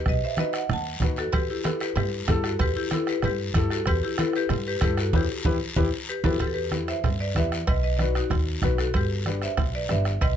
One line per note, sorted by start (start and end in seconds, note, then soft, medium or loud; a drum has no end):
0.06 0.19 B1 loud
0.06 0.22 B4 medium
0.06 0.23 D#5 loud
0.06 bombo low medium
0.06 bombo rim medium
0.06 high conga soft
0.06 long guiro medium
0.24 0.38 C5 medium
0.24 0.40 E5 medium
0.37 0.60 D#4 medium
0.37 0.60 F#4 medium
0.37 0.60 B4 medium
0.37 0.54 B4 medium
0.37 0.54 D#5 loud
0.37 bombo rim medium
0.37 high conga medium
0.37 short guiro medium
0.53 0.62 D#5 medium
0.53 0.62 F#5 medium
0.53 bombo rim medium
0.53 short guiro medium
0.69 0.95 D#2 medium
0.69 1.01 F#5 medium
0.69 1.01 A5 loud
0.69 bombo rim medium
0.69 high conga soft
0.69 low conga medium
0.69 long guiro medium
1.00 1.27 D#2 medium
1.00 1.24 D#4 medium
1.00 1.24 F#4 medium
1.00 1.24 B4 medium
1.00 bombo low loud
1.00 bombo rim medium
1.00 high conga medium
1.00 low conga medium
1.00 short guiro medium
1.16 1.26 F#4 medium
1.16 1.26 A4 medium
1.16 bombo rim medium
1.16 short guiro medium
1.32 1.46 E2 medium
1.32 1.41 G4 medium
1.32 1.41 B4 loud
1.32 bombo low medium
1.32 bombo rim medium
1.32 cowbell loud
1.32 high conga soft
1.32 long guiro medium
1.50 1.64 E4 medium
1.50 1.65 G4 medium
1.64 1.87 E4 medium
1.64 1.72 E4 medium
1.64 1.87 G4 medium
1.64 1.72 A4 medium
1.64 1.87 B4 medium
1.64 bombo rim medium
1.64 cowbell medium
1.64 high conga medium
1.64 short guiro medium
1.80 1.88 G4 medium
1.80 1.88 B4 medium
1.80 bombo rim medium
1.80 short guiro medium
1.96 2.22 G2 medium
1.96 2.04 G4 medium
1.96 2.04 B4 medium
1.96 bombo rim medium
1.96 cowbell medium
1.96 high conga soft
1.96 low conga loud
1.96 long guiro medium
2.27 2.54 G2 medium
2.27 2.51 E4 medium
2.27 2.51 G4 medium
2.27 2.51 A4 loud
2.27 bombo low medium
2.27 bombo rim loud
2.27 cowbell medium
2.27 high conga medium
2.27 low timbale medium
2.27 short guiro medium
2.44 2.59 F#4 medium
2.44 2.59 A4 medium
2.44 bombo rim medium
2.44 short guiro medium
2.59 2.73 E2 medium
2.59 2.68 G4 medium
2.59 2.68 B4 loud
2.59 bombo low medium
2.59 bombo rim medium
2.59 cowbell loud
2.59 high conga soft
2.59 low conga medium
2.59 long guiro medium
2.76 2.83 E4 medium
2.76 2.84 G4 medium
2.91 3.14 E4 medium
2.91 3.08 E4 medium
2.91 3.14 G4 medium
2.91 3.08 A4 medium
2.91 3.14 B4 medium
2.91 bombo rim medium
2.91 cowbell medium
2.91 high conga medium
2.91 short guiro medium
3.07 3.15 G4 medium
3.07 3.16 B4 loud
3.07 bombo rim medium
3.07 short guiro medium
3.22 3.49 G2 medium
3.22 3.39 G4 medium
3.22 3.39 B4 medium
3.22 bombo rim medium
3.22 cowbell medium
3.22 high conga soft
3.22 low conga medium
3.22 long guiro medium
3.54 3.80 G2 medium
3.54 3.77 E4 medium
3.54 3.78 G4 medium
3.54 3.78 A4 medium
3.54 bombo low medium
3.54 bombo rim medium
3.54 cowbell medium
3.54 high conga medium
3.54 short guiro medium
3.70 3.78 F#4 medium
3.70 3.79 A4 loud
3.70 bombo rim medium
3.70 short guiro medium
3.86 4.00 E2 loud
3.86 4.02 G4 medium
3.86 4.02 B4 loud
3.86 bombo low medium
3.86 bombo rim medium
3.86 cowbell loud
3.86 high conga soft
3.86 long guiro medium
4.03 4.18 E4 medium
4.03 4.19 G4 medium
4.18 4.41 E4 medium
4.18 4.34 E4 medium
4.18 4.41 G4 medium
4.18 4.34 A4 loud
4.18 4.41 B4 medium
4.18 bombo rim loud
4.18 cowbell medium
4.18 high conga loud
4.18 short guiro medium
4.33 4.65 G4 medium
4.33 4.66 B4 loud
4.33 bombo rim medium
4.33 short guiro medium
4.49 4.75 G2 medium
4.49 bombo rim medium
4.49 cowbell medium
4.49 high conga soft
4.49 low conga loud
4.49 long guiro medium
4.68 4.75 G4 medium
4.68 4.74 B4 loud
4.81 5.07 G2 medium
4.81 5.04 E4 medium
4.81 5.04 G4 medium
4.81 4.98 G4 medium
4.81 5.04 A4 medium
4.81 4.98 B4 medium
4.81 bombo low medium
4.81 bombo rim medium
4.81 cowbell medium
4.81 high conga medium
4.81 short guiro medium
4.97 5.06 F#4 medium
4.97 5.06 A4 medium
4.97 bombo rim medium
4.97 short guiro medium
5.13 5.25 E2 loud
5.13 5.24 E4 medium
5.13 6.06 E4 medium
5.13 5.24 G4 medium
5.13 6.06 G4 medium
5.13 5.24 B4 medium
5.13 bombo low loud
5.13 high conga loud
5.13 high timbale loud
5.13 long guiro loud
5.45 5.57 E2 medium
5.45 5.56 E4 loud
5.45 5.56 G4 loud
5.45 5.56 B4 loud
5.45 bombo low loud
5.45 high conga loud
5.45 high timbale medium
5.45 long guiro loud
5.76 5.89 E2 medium
5.76 5.87 E4 loud
5.76 5.87 G4 loud
5.76 5.87 B4 medium
5.76 bombo low loud
5.76 high conga loud
5.76 high timbale loud
5.76 long guiro loud
6.09 6.17 G4 medium
6.09 6.16 B4 loud
6.24 6.36 E2 loud
6.24 6.35 E4 loud
6.24 6.33 F#4 medium
6.24 6.35 G4 medium
6.24 6.32 A4 medium
6.24 6.35 B4 loud
6.24 bombo low medium
6.24 high conga loud
6.24 high timbale loud
6.24 long guiro loud
6.40 6.91 E2 medium
6.40 6.48 G4 medium
6.40 6.48 B4 loud
6.40 bombo low medium
6.40 bombo rim medium
6.40 cowbell medium
6.40 high conga soft
6.40 long guiro medium
6.47 6.54 A4 medium
6.54 6.86 G4 medium
6.54 6.86 B4 loud
6.71 6.94 E4 medium
6.71 6.94 G4 medium
6.71 6.95 B4 medium
6.71 bombo rim medium
6.71 high conga medium
6.71 short guiro medium
6.88 7.18 C5 medium
6.88 7.21 E5 medium
6.88 bombo rim medium
6.88 short guiro medium
7.04 7.29 G2 medium
7.04 bombo low medium
7.04 bombo rim medium
7.04 cowbell medium
7.04 high conga soft
7.04 low conga medium
7.04 long guiro medium
7.20 7.28 B4 medium
7.20 7.28 D5 medium
7.35 7.61 E2 medium
7.35 7.58 E4 medium
7.35 7.58 G4 medium
7.35 7.58 B4 medium
7.35 7.66 B4 medium
7.35 7.66 E5 loud
7.35 bombo low medium
7.35 bombo rim medium
7.35 high conga medium
7.35 short guiro medium
7.52 bombo rim medium
7.52 short guiro medium
7.67 8.18 B1 medium
7.67 7.76 B4 medium
7.67 7.75 D#5 medium
7.67 bombo low medium
7.67 bombo rim medium
7.67 cowbell loud
7.67 high conga soft
7.67 long guiro medium
7.83 7.95 B4 medium
7.83 7.96 D#5 medium
7.97 8.22 D#4 medium
7.97 8.15 F#4 medium
7.97 8.22 F#4 medium
7.97 8.15 B4 medium
7.97 8.00 D5 medium
7.97 bombo rim medium
7.97 high conga medium
7.97 short guiro medium
8.01 8.22 B4 medium
8.15 8.60 D#4 medium
8.15 8.60 F#4 medium
8.15 bombo rim medium
8.15 short guiro medium
8.30 8.57 D#2 medium
8.30 bombo low medium
8.30 bombo rim medium
8.30 cowbell medium
8.30 high conga soft
8.30 low conga medium
8.30 long guiro medium
8.62 8.88 B1 medium
8.62 8.85 D#4 medium
8.62 8.85 F#4 medium
8.62 8.71 F#4 medium
8.62 8.70 B4 medium
8.62 8.86 B4 medium
8.62 bombo low medium
8.62 bombo rim medium
8.62 high conga medium
8.62 low conga medium
8.62 short guiro medium
8.78 8.87 F#4 medium
8.78 8.86 A4 medium
8.78 bombo rim medium
8.78 short guiro medium
8.94 9.45 G1 medium
8.94 9.40 G4 medium
8.94 9.45 B4 medium
8.94 bombo low medium
8.94 bombo rim medium
8.94 cowbell medium
8.94 high conga soft
8.94 long guiro medium
9.26 9.49 D4 medium
9.26 9.49 G4 medium
9.26 9.49 B4 medium
9.26 bombo rim medium
9.26 high conga medium
9.26 short guiro medium
9.42 9.73 C5 medium
9.42 9.72 E5 loud
9.42 bombo rim medium
9.42 short guiro medium
9.57 9.83 B1 medium
9.57 bombo low medium
9.57 bombo rim medium
9.57 cowbell medium
9.57 high conga soft
9.57 low conga medium
9.57 long guiro medium
9.75 9.83 B4 medium
9.75 9.82 D5 medium
9.89 10.15 G1 medium
9.89 10.12 D4 medium
9.89 10.12 G4 medium
9.89 10.12 B4 medium
9.89 10.21 B4 medium
9.89 10.20 E5 loud
9.89 bombo rim medium
9.89 high conga medium
9.89 short guiro medium
10.05 bombo rim medium
10.05 short guiro medium
10.21 10.37 B1 medium
10.21 10.37 B4 medium
10.21 10.36 D#5 loud
10.21 bombo low medium
10.21 bombo rim medium
10.21 cowbell loud
10.21 high conga soft
10.21 long guiro medium